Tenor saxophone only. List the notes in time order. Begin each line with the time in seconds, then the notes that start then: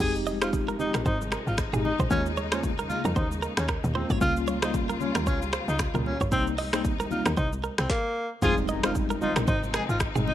0.01 G#4
0.43 F4
0.80 D#4
1.06 D#4
1.48 F4
1.85 D#4
2.11 C#4
2.52 C#4
2.90 F4
3.16 D#4
3.58 C#4
3.95 C4
4.22 F4
4.64 D#4
5.01 C#4
5.27 C#4
5.69 D#4
6.07 C#4
6.32 C4
6.74 C4
7.12 F4
7.38 D#4
7.80 C4
7.91 A#3
8.43 G#4
8.85 F4
9.22 D#4
9.48 D#4
9.90 F4
10.28 D#4